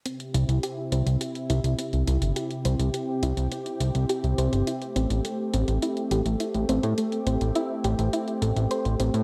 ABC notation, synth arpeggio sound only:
X:1
M:4/4
L:1/8
Q:1/4=104
K:C
V:1 name="Synth arpeggio sound"
C E G c G E C E | G c G E C E G c | E C A, C E G E C | A, C E G E A, c C |]